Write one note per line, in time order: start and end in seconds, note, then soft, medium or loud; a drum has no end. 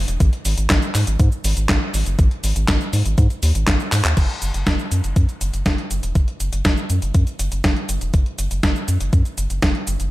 0.08 0.18 E1 medium
0.08 closed hi-hat medium
0.08 cabasa soft
0.20 0.30 G#1 loud
0.20 kick loud
0.20 closed hi-hat medium
0.20 cabasa soft
0.33 closed hi-hat soft
0.45 0.55 G#1 medium
0.45 open hi-hat loud
0.45 cabasa medium
0.58 0.67 G#1 medium
0.58 closed hi-hat medium
0.58 cabasa soft
0.70 0.80 G#1 loud
0.70 kick loud
0.70 snare loud
0.70 clap medium
0.70 closed hi-hat medium
0.70 cabasa soft
0.82 closed hi-hat soft
0.82 cabasa soft
0.95 1.04 G#2 medium
0.95 clap soft
0.95 open hi-hat loud
0.95 cabasa medium
1.07 1.17 G#1 medium
1.07 closed hi-hat medium
1.07 cabasa soft
1.20 1.29 G#2 loud
1.20 kick loud
1.20 closed hi-hat medium
1.20 cabasa soft
1.32 cabasa soft
1.44 1.54 G#1 loud
1.44 open hi-hat loud
1.44 cabasa medium
1.57 1.66 G#1 medium
1.57 closed hi-hat medium
1.57 cabasa soft
1.69 1.79 G#1 loud
1.69 kick loud
1.69 snare loud
1.69 clap medium
1.69 closed hi-hat medium
1.69 cabasa soft
1.94 2.03 G#1 medium
1.94 open hi-hat loud
1.94 cabasa medium
2.06 2.16 F#1 medium
2.06 closed hi-hat medium
2.06 cabasa soft
2.19 2.28 G#1 loud
2.19 kick loud
2.19 closed hi-hat medium
2.19 cabasa soft
2.31 closed hi-hat soft
2.44 2.53 G#1 medium
2.44 open hi-hat loud
2.44 cabasa medium
2.56 2.65 G#1 medium
2.56 closed hi-hat medium
2.56 cabasa soft
2.68 2.78 G#1 loud
2.68 kick loud
2.68 snare loud
2.68 clap loud
2.68 closed hi-hat medium
2.68 cabasa soft
2.81 closed hi-hat soft
2.81 cabasa soft
2.93 3.03 G#2 loud
2.93 open hi-hat loud
2.93 cabasa medium
3.05 3.15 G#1 medium
3.05 closed hi-hat medium
3.05 cabasa soft
3.18 3.27 G#2 loud
3.18 kick loud
3.18 closed hi-hat medium
3.18 cabasa soft
3.30 closed hi-hat soft
3.30 cabasa soft
3.43 3.52 D#2 loud
3.43 open hi-hat loud
3.43 cabasa medium
3.55 3.65 G#1 medium
3.55 closed hi-hat medium
3.55 cabasa soft
3.67 3.77 G#1 loud
3.67 kick loud
3.67 snare loud
3.67 clap medium
3.67 closed hi-hat medium
3.67 cabasa soft
3.80 cabasa soft
3.92 4.02 G#2 loud
3.92 clap medium
3.92 open hi-hat loud
3.92 cabasa medium
4.05 4.14 D#2 medium
4.05 clap loud
4.05 closed hi-hat medium
4.05 cabasa soft
4.17 4.27 F#1 loud
4.17 kick loud
4.17 closed hi-hat medium
4.17 crash medium
4.17 cabasa soft
4.29 closed hi-hat soft
4.42 4.51 F#1 medium
4.42 closed hi-hat medium
4.42 cabasa medium
4.54 4.64 F#1 medium
4.54 closed hi-hat medium
4.54 cabasa soft
4.67 4.76 F#1 loud
4.67 kick loud
4.67 snare loud
4.67 closed hi-hat medium
4.67 cabasa soft
4.79 cabasa soft
4.91 5.01 F#2 medium
4.91 closed hi-hat medium
4.91 cabasa medium
5.04 5.13 F#1 medium
5.04 closed hi-hat soft
5.04 cabasa soft
5.16 5.26 F#2 loud
5.16 kick loud
5.16 closed hi-hat medium
5.16 cabasa soft
5.29 closed hi-hat soft
5.29 cabasa soft
5.41 5.51 F#1 medium
5.41 closed hi-hat medium
5.41 cabasa medium
5.53 5.63 F#1 medium
5.53 closed hi-hat medium
5.53 cabasa soft
5.66 5.75 F#1 loud
5.66 kick loud
5.66 snare loud
5.66 closed hi-hat medium
5.66 cabasa soft
5.78 closed hi-hat soft
5.91 6.00 F#1 medium
5.91 closed hi-hat medium
5.91 cabasa medium
6.03 6.13 E1 medium
6.03 closed hi-hat medium
6.03 cabasa soft
6.15 6.25 F#1 loud
6.15 kick loud
6.15 closed hi-hat medium
6.15 cabasa soft
6.28 closed hi-hat soft
6.40 6.50 F#1 medium
6.40 closed hi-hat medium
6.40 cabasa medium
6.53 6.62 F#1 medium
6.53 closed hi-hat medium
6.53 cabasa soft
6.65 6.75 F#1 loud
6.65 kick loud
6.65 snare loud
6.65 closed hi-hat medium
6.65 cabasa soft
6.77 cabasa soft
6.90 6.99 F#2 medium
6.90 closed hi-hat medium
6.90 cabasa medium
7.02 7.12 F#1 medium
7.02 closed hi-hat soft
7.02 cabasa soft
7.14 7.24 F#2 loud
7.14 kick loud
7.14 closed hi-hat medium
7.14 cabasa soft
7.27 closed hi-hat soft
7.27 cabasa soft
7.39 7.49 F#1 medium
7.39 closed hi-hat medium
7.39 cabasa medium
7.52 7.61 F#1 medium
7.52 closed hi-hat medium
7.52 cabasa soft
7.64 7.74 F#1 loud
7.64 kick loud
7.64 snare loud
7.64 closed hi-hat medium
7.64 cabasa soft
7.76 closed hi-hat soft
7.89 7.98 F#1 medium
7.89 closed hi-hat medium
7.89 cabasa medium
8.01 8.11 E1 medium
8.01 closed hi-hat medium
8.01 cabasa soft
8.14 8.23 F#1 loud
8.14 kick loud
8.14 closed hi-hat medium
8.14 cabasa soft
8.26 closed hi-hat soft
8.39 8.48 F#1 medium
8.39 closed hi-hat medium
8.39 cabasa medium
8.51 8.60 F#1 medium
8.51 closed hi-hat soft
8.51 cabasa soft
8.63 8.73 F#1 loud
8.63 kick loud
8.63 snare loud
8.63 closed hi-hat medium
8.63 cabasa soft
8.76 cabasa soft
8.88 8.98 F#2 medium
8.88 closed hi-hat medium
8.88 cabasa medium
9.00 9.10 F#1 medium
9.00 closed hi-hat soft
9.00 cabasa soft
9.13 9.22 F#2 loud
9.13 kick loud
9.13 closed hi-hat medium
9.13 cabasa soft
9.25 closed hi-hat soft
9.25 cabasa soft
9.38 9.47 F#1 medium
9.38 closed hi-hat medium
9.38 cabasa medium
9.50 9.60 F#1 medium
9.50 closed hi-hat soft
9.50 cabasa soft
9.62 9.72 F#1 loud
9.62 kick loud
9.62 snare loud
9.62 closed hi-hat medium
9.62 cabasa soft
9.75 closed hi-hat soft
9.87 9.97 F#1 medium
9.87 closed hi-hat medium
9.87 cabasa medium
10.00 10.09 F#1 medium
10.00 closed hi-hat soft
10.00 cabasa soft